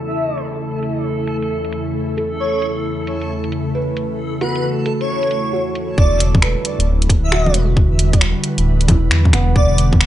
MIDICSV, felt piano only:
0, 0, Header, 1, 2, 480
1, 0, Start_track
1, 0, Tempo, 447761
1, 649, Time_signature, 4, 2, 24, 8
1, 10784, End_track
2, 0, Start_track
2, 0, Title_t, "Felt piano"
2, 0, Program_c, 0, 0
2, 0, Control_c, 0, 64, 127
2, 0, Note_on_c, 0, 66, 55
2, 2328, Note_on_c, 0, 69, 59
2, 4018, Note_on_c, 0, 71, 63
2, 4029, Note_off_c, 0, 69, 0
2, 4729, Note_off_c, 0, 66, 0
2, 4729, Note_on_c, 0, 66, 73
2, 4933, Note_on_c, 0, 69, 46
2, 5192, Note_off_c, 0, 69, 0
2, 5208, Note_on_c, 0, 69, 72
2, 5714, Note_off_c, 0, 71, 0
2, 5913, Note_off_c, 0, 66, 0
2, 5930, Note_on_c, 0, 66, 58
2, 6421, Control_c, 0, 64, 0
2, 6585, Control_c, 0, 64, 127
2, 6605, Note_off_c, 0, 69, 0
2, 6606, Note_off_c, 0, 66, 0
2, 6893, Note_on_c, 0, 71, 65
2, 7847, Note_on_c, 0, 66, 76
2, 8592, Note_off_c, 0, 71, 0
2, 9517, Note_on_c, 0, 64, 78
2, 9549, Note_off_c, 0, 66, 0
2, 10000, Note_on_c, 0, 59, 81
2, 10784, Note_off_c, 0, 59, 0
2, 10784, Note_off_c, 0, 64, 0
2, 10784, End_track
0, 0, End_of_file